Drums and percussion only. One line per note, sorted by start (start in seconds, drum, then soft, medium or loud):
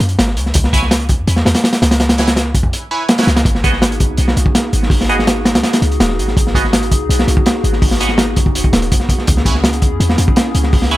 0.00 closed hi-hat medium
0.09 closed hi-hat soft
0.19 snare loud
0.19 closed hi-hat medium
0.27 snare soft
0.37 closed hi-hat medium
0.46 snare soft
0.54 kick loud
0.54 closed hi-hat loud
0.64 snare medium
0.73 kick medium
0.73 closed hi-hat medium
0.82 snare soft
0.91 snare loud
0.91 closed hi-hat medium
1.00 closed hi-hat soft
1.09 kick loud
1.09 closed hi-hat medium
1.27 closed hi-hat medium
1.36 snare medium
1.46 snare loud
1.46 closed hi-hat medium
1.54 snare loud
1.54 closed hi-hat medium
1.64 snare loud
1.64 closed hi-hat medium
1.73 snare loud
1.73 closed hi-hat medium
1.82 snare loud
1.82 closed hi-hat medium
1.91 snare loud
1.91 closed hi-hat medium
2.00 snare loud
2.00 closed hi-hat medium
2.09 snare loud
2.09 closed hi-hat medium
2.18 snare loud
2.18 closed hi-hat medium
2.27 snare loud
2.27 closed hi-hat medium
2.36 snare loud
2.36 closed hi-hat medium
2.55 kick loud
2.55 closed hi-hat medium
2.63 kick medium
2.73 closed hi-hat medium
3.09 snare loud
3.09 closed hi-hat medium
3.18 snare loud
3.18 closed hi-hat medium
3.23 snare loud
3.23 closed hi-hat medium
3.28 snare loud
3.28 closed hi-hat medium
3.36 snare loud
3.36 closed hi-hat medium
3.45 kick loud
3.45 closed hi-hat medium
3.55 snare medium
3.64 kick loud
3.64 closed hi-hat medium
3.73 snare soft
3.82 snare loud
3.82 closed hi-hat medium
3.92 closed hi-hat soft
4.00 kick medium
4.00 closed hi-hat medium
4.17 closed hi-hat medium
4.28 snare medium
4.37 closed hi-hat medium
4.46 kick loud
4.55 snare loud
4.55 closed hi-hat medium
4.73 closed hi-hat medium
4.83 snare soft
4.90 kick loud
4.90 open hi-hat medium
5.01 snare medium
5.09 closed hi-hat medium
5.19 snare medium
5.27 snare loud
5.27 closed hi-hat medium
5.45 snare loud
5.45 closed hi-hat medium
5.55 snare loud
5.55 closed hi-hat medium
5.63 snare loud
5.63 closed hi-hat medium
5.73 snare loud
5.73 closed hi-hat medium
5.82 closed hi-hat medium
5.92 closed hi-hat soft
6.00 snare loud
6.00 closed hi-hat medium
6.09 snare medium
6.19 closed hi-hat medium
6.28 snare soft
6.37 kick loud
6.37 closed hi-hat medium
6.47 snare medium
6.55 kick medium
6.55 closed hi-hat medium
6.64 snare soft
6.73 snare loud
6.73 closed hi-hat medium
6.83 closed hi-hat soft
6.91 kick loud
6.91 closed hi-hat medium
7.10 closed hi-hat medium
7.19 snare medium
7.28 closed hi-hat medium
7.37 kick loud
7.46 snare loud
7.46 closed hi-hat medium
7.64 closed hi-hat medium
7.73 snare soft
7.82 kick loud
7.82 open hi-hat medium
7.91 snare medium
8.00 closed hi-hat medium
8.09 snare soft
8.18 snare loud
8.18 closed hi-hat medium
8.36 kick medium
8.36 closed hi-hat medium
8.46 kick loud
8.55 closed hi-hat medium
8.64 kick medium
8.73 snare loud
8.73 closed hi-hat medium
8.82 closed hi-hat soft
8.92 kick medium
8.92 closed hi-hat medium
9.00 snare soft
9.09 kick medium
9.09 closed hi-hat medium
9.19 snare soft
9.27 kick loud
9.27 closed hi-hat medium
9.37 snare medium
9.45 kick loud
9.45 closed hi-hat medium
9.55 snare soft
9.64 snare loud
9.64 closed hi-hat medium
9.73 closed hi-hat soft
9.82 kick medium
9.82 closed hi-hat medium
10.00 closed hi-hat medium
10.09 snare medium
10.18 closed hi-hat medium
10.28 kick loud
10.36 snare loud
10.36 closed hi-hat medium
10.55 closed hi-hat medium
10.63 snare soft
10.73 kick loud
10.73 open hi-hat medium
10.82 snare medium
10.91 closed hi-hat medium